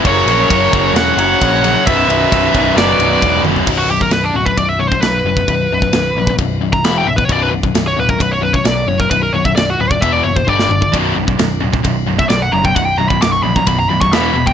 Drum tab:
CC |----------------|----------------|x---------------|----------------|
RD |x-x-x-x-x-x-x-x-|x-x-x-x-x-x-x---|----b---b---b---|b---b---b---b---|
SD |--------o-------|--------o-------|----o-------o---|----o-------o---|
T1 |----------------|--------------o-|----------------|----------------|
T2 |----------------|----------------|----------------|----------------|
FT |----------------|---------------o|----------------|----------------|
BD |o---o-o-----o---|o---o-o-----o---|o--o---oo--o---o|o--o---oo--o---o|

CC |----------------|----------------|----------------|----------------|
RD |b---b---b---b---|b---b---b-------|b---b---b---b---|b---b---b---b---|
SD |----o-------o---|----o--------o--|----o-------o---|----o-------o---|
T1 |----------------|----------------|----------------|----------------|
T2 |----------------|--------------o-|----------------|----------------|
FT |----------------|----------------|----------------|----------------|
BD |o--o---oo--o---o|o--o---oo--oo--o|o--o---oo--o---o|o--o---oo--o---o|